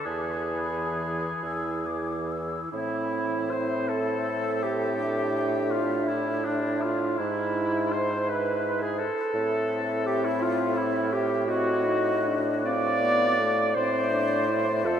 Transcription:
0.05 bassoon E2, oboe G#4
0.51 french horn E3, clarinet E4, flute B5
1.43 bassoon E2, flute E6
1.86 french horn E3, clarinet E4, flute D6
2.32 flute E6
2.71 bassoon A2, french horn C4, clarinet E4, oboe E4, flute E5
3.50 clarinet C5, oboe C5
3.88 oboe A4, clarinet A4
4.62 oboe G4, clarinet G4
4.98 french horn D4
5.70 oboe F4, clarinet F4
6.07 oboe E4, clarinet E4
6.45 oboe D4, clarinet D4
6.82 oboe F4, clarinet F4
7.18 bassoon G#2, oboe E4, clarinet E4, french horn E4
7.92 oboe C5, clarinet C5
8.28 clarinet B4, oboe B4
8.82 clarinet G#4, oboe G#4
8.98 clarinet A4, oboe A4
9.34 bassoon A2, french horn C4, flute E5
10.06 clarinet G4, oboe G4
10.24 clarinet E4, oboe E4
10.41 clarinet F4, oboe F4
10.77 oboe E4, clarinet E4
11.12 clarinet G4, oboe G4
11.47 french horn C4, clarinet F#4, oboe F#4, flute D#5
11.86 french horn D#4
12.26 french horn D4
12.65 french horn C4, clarinet D5, oboe D5, flute F5
13.02 french horn B3
13.40 french horn A3
13.75 bassoon A2, french horn C4, clarinet C5, oboe C5, flute E5
14.13 french horn D4
14.49 french horn E4
14.84 bassoon F2, french horn F4, clarinet A4, oboe A4

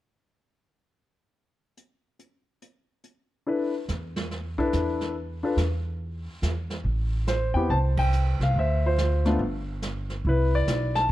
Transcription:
1.77 closed hi-hat
2.19 closed hi-hat
2.62 closed hi-hat
3.04 closed hi-hat
3.46 grand piano D4 E4 A4 B4, brush sweep
3.88 upright bass E2, snare, hi-hat pedal
4.16 snare
4.31 brush sweep, snare
4.58 grand piano D4 E4 A4 B4, kick
4.73 upright bass E2, snare, hi-hat pedal
5.01 snare
5.15 brush sweep
5.43 grand piano D4 F4 A4 B4
5.57 upright bass E2, snare, hi-hat pedal
6.00 brush sweep
6.42 upright bass E2, snare, hi-hat pedal
6.70 snare
6.84 upright bass A1, brush sweep
7.27 grand piano C5, snare, hi-hat pedal
7.54 upright bass E2, grand piano B3 C4 E4 G4 G5
7.70 upright bass C2, grand piano C5 A5, brush sweep
7.97 grand piano G5, kick, ride
8.13 hi-hat pedal
8.39 upright bass C2, grand piano F5, snare
8.54 upright bass D2, brush sweep
8.58 grand piano C5 E5
8.86 grand piano F4 C5
8.98 snare, hi-hat pedal
9.25 grand piano A3 B3 D4 F4, snare
9.39 upright bass G1, brush sweep
9.82 snare, hi-hat pedal
10.10 snare
10.25 upright bass C2, grand piano E4, brush sweep
10.29 grand piano B4
10.55 grand piano D5
10.67 upright bass B1, snare, hi-hat pedal
10.95 grand piano A5, snare

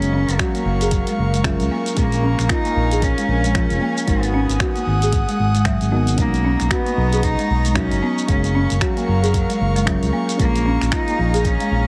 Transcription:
Already playing: analog synth bass F#1, marimba G#3, cello C#4, synth stab C#4 G#4 A#4 F5, analog synth pad A#4 F5 C#6
0.02 closed hi-hat, shaker
0.13 marimba C#4
0.28 analog synth bass F#1, closed hi-hat, shaker
0.39 cello F#3, marimba F#4, finger snap, kick, closed hi-hat, shaker
0.55 marimba A#3, closed hi-hat, shaker
0.65 analog synth bass F#1
0.81 marimba G#4, closed hi-hat, shaker
0.91 kick, closed hi-hat, shaker
1.07 marimba G#3, closed hi-hat, shaker
1.18 analog synth bass F#1
1.34 marimba G#3, closed hi-hat, shaker
1.44 marimba F#3, synth stab C#4 F4 G#4 A#4, finger snap, kick, closed hi-hat, shaker
1.60 analog synth bass C#2, closed hi-hat, shaker
1.71 marimba A#3
1.86 closed hi-hat, shaker
1.95 analog synth bass A#1, marimba G#3, cello A#3, synth stab C#4 F4 G#4, analog synth pad F5 G#5, kick, closed hi-hat, shaker
1.99 synth stab A#4
2.12 closed hi-hat, shaker
2.23 marimba C#4
2.39 analog synth bass A#1, finger snap, closed hi-hat, shaker
2.49 cello D#4, marimba F4, finger snap, kick, closed hi-hat, shaker
2.65 marimba A#3, closed hi-hat, shaker
2.76 analog synth bass A#1
2.91 marimba G#4, closed hi-hat, shaker
3.02 cello C#4, kick, closed hi-hat, shaker
3.18 marimba G#3, closed hi-hat, shaker
3.28 analog synth bass A#1
3.44 marimba G#3, closed hi-hat, shaker
3.54 marimba F3, synth stab C#4 F4 G#4 A#4, finger snap, kick, closed hi-hat, shaker
3.70 analog synth bass F1, closed hi-hat, shaker
3.81 marimba A#3
3.98 shaker
4.07 analog synth bass G#1, marimba G#3, cello B3, synth stab D#4 F#4 A#4, analog synth pad F#5 D#6, kick, closed hi-hat, shaker
4.23 closed hi-hat, shaker
4.34 marimba C#4
4.49 analog synth bass G#1, closed hi-hat, shaker
4.60 marimba F#4, finger snap, kick, closed hi-hat, shaker
4.76 marimba A#3, closed hi-hat, shaker
4.87 analog synth bass G#1
5.02 marimba G#4, closed hi-hat, shaker
5.13 kick, closed hi-hat, shaker
5.29 marimba G#3, closed hi-hat, shaker
5.39 analog synth bass G#1
5.55 marimba G#3, closed hi-hat, shaker
5.65 marimba F#3, finger snap, kick, closed hi-hat, shaker
5.81 analog synth bass G#1, closed hi-hat, shaker
5.91 synth stab B3 D#4 F#4 A#4, marimba B3
6.07 closed hi-hat, shaker
6.16 analog synth bass B1, marimba G#3, cello A#3, synth stab C#4 D#4 F#4 A#4, analog synth pad D#5 A#5 C#6, kick, closed hi-hat, shaker
6.34 closed hi-hat, shaker
6.45 marimba C#4
6.60 analog synth bass B1, finger snap, closed hi-hat, shaker
6.71 cello B3, marimba F#4, finger snap, kick, closed hi-hat, shaker
6.86 marimba A#3, closed hi-hat, shaker
6.98 analog synth bass B1
7.13 marimba G#4, closed hi-hat, shaker
7.23 cello D#4, kick, closed hi-hat, shaker
7.39 marimba G#3, closed hi-hat, shaker
7.50 analog synth bass B1
7.65 marimba G#3, closed hi-hat, shaker
7.70 cello D#4
7.74 marimba F#3, synth stab C#4 D#4 F#4 A#4, cello C#4, finger snap, kick, closed hi-hat, shaker
7.91 analog synth bass F#1, closed hi-hat, shaker
8.03 marimba B3
8.19 shaker
8.26 analog synth bass F#1, marimba G#3, synth stab C#4 G#4 A#4 F5, cello C#4, analog synth pad A#4 F5, kick, closed hi-hat, shaker
8.44 closed hi-hat, shaker
8.55 marimba C#4
8.70 analog synth bass F#1, closed hi-hat, shaker
8.81 cello F#3, marimba F#4, finger snap, kick, closed hi-hat, shaker
8.97 marimba A#3, closed hi-hat, shaker
9.08 analog synth bass F#1
9.23 marimba G#4, closed hi-hat, shaker
9.34 kick, closed hi-hat, shaker
9.49 marimba G#3, closed hi-hat, shaker
9.61 analog synth bass F#1
9.76 marimba G#3, closed hi-hat, shaker
9.85 marimba F#3, synth stab C#4 F4 G#4 A#4, finger snap, kick, closed hi-hat, shaker
10.03 analog synth bass C#2, closed hi-hat, shaker
10.13 marimba A#3
10.29 closed hi-hat, shaker
10.37 analog synth bass A#1, marimba G#3, cello A#3, synth stab C#4 F4 G#4 A#4, analog synth pad G#4 F5 A#5, kick, closed hi-hat, shaker
10.56 closed hi-hat, shaker
10.66 marimba C#4
10.81 analog synth bass A#1, finger snap, closed hi-hat, shaker
10.92 cello D#4, marimba F4, finger snap, kick, closed hi-hat, shaker
11.08 marimba A#3, closed hi-hat, shaker
11.19 analog synth bass A#1
11.34 marimba G#4, closed hi-hat, shaker
11.40 cello D#4
11.45 cello C#4, kick, closed hi-hat, shaker
11.60 marimba G#3, closed hi-hat, shaker
11.71 analog synth bass A#1

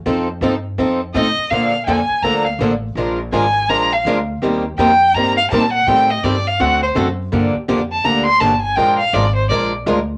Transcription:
0.06 upright bass F2, steel-string acoustic guitar F3 C4 D#4 A4
0.41 upright bass G2, steel-string acoustic guitar F3 C4 D#4 A4
0.78 upright bass F2, steel-string acoustic guitar F3 C4 D#4 A4
1.14 upright bass A2, steel-string acoustic guitar F3 C4 D#4 A4, violin D#5
1.37 muted upright bass stroke
1.50 upright bass A#2, steel-string acoustic guitar D3 F3 A#3 D4 A4, violin F5
1.87 upright bass F2, steel-string acoustic guitar D3 F3 A#3 D4 A4, violin G#5
2.09 muted upright bass stroke
2.22 upright bass D2, steel-string acoustic guitar D3 F3 A#3 D4 A4, violin A#5
2.46 violin F5
2.59 upright bass A1, steel-string acoustic guitar D3 F3 A#3 D4 A4
2.95 upright bass A#1, steel-string acoustic guitar F3 G#3 D4 F4 A#4
3.32 upright bass G#1, steel-string acoustic guitar F3 G#3 D4 F4 A#4, violin G#5
3.69 upright bass A#1, steel-string acoustic guitar F3 G#3 D4 F4 A#4, violin A#5
3.93 violin F5
4.05 upright bass D2, steel-string acoustic guitar F3 G#3 D4 F4 A#4
4.42 upright bass D#2, steel-string acoustic guitar D#3 G3 A#3 C4 D#4 G4 A#4 C5
4.78 upright bass F2, steel-string acoustic guitar D#3 G3 A#3 C4 D#4 G4 A#4 C5, violin G5
5.14 upright bass G2, steel-string acoustic guitar D#3 G3 A#3 C4 D#4 G4 A#4 C5, violin A#5
5.37 violin F5
5.50 upright bass A#2, steel-string acoustic guitar D#3 G3 A#3 C4 D#4 G4 A#4 C5, violin A5
5.73 violin F#5
5.87 upright bass A2, steel-string acoustic guitar D#3 G3 C4 G4 A4, violin G5
6.10 violin D#5
6.23 upright bass G2, steel-string acoustic guitar D#3 G3 C4 G4 A4, violin D5
6.47 violin F5
6.60 upright bass D2, steel-string acoustic guitar D3 A3 C4 F#4 A4, violin F#5
6.83 violin C5
6.96 upright bass F#2, steel-string acoustic guitar D3 A3 C4 F#4 A4
7.32 upright bass G2, steel-string acoustic guitar D3 F3 A#3 D4 G4
7.55 muted upright bass stroke
7.68 upright bass F2, steel-string acoustic guitar D3 F3 A#3 D4 G4
7.92 violin A5
8.05 upright bass D2, steel-string acoustic guitar D3 F3 A#3 D4 G4, violin A#5
8.26 violin C6
8.40 upright bass G1, steel-string acoustic guitar D3 F3 A#3 D4 G4, violin A5
8.62 violin G#5
8.76 upright bass A#1, steel-string acoustic guitar F3 G#3 D4 F4 A#4, violin G5
8.99 violin F5
9.13 upright bass G#1, steel-string acoustic guitar F3 G#3 D4 F4 A#4, violin D5
9.36 violin C5
9.49 upright bass A#1, steel-string acoustic guitar F3 G#3 D4 F4 A#4, violin D5
9.86 upright bass D2, steel-string acoustic guitar F3 G#3 D4 F4 A#4

